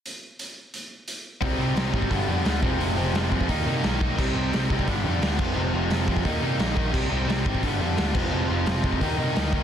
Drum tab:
CC |----------------|----------------|----------------|x-------------x-|
HH |x---x---x---x---|o---o---o---o---|o---o---o---o---|----o---o---o---|
SD |----------------|----o-------o---|----o-------o---|----o-------o---|
BD |----------------|o-----ooo-----o-|------ooo-----o-|o-----ooo-----o-|

CC |----------------|x-------------x-|----------------|
HH |----o---o---o---|----o---o---o---|----o---o---o---|
SD |----o-------o---|----o-------o---|----o-------o---|
BD |------ooo-----o-|o-----ooo-----o-|------ooo-----o-|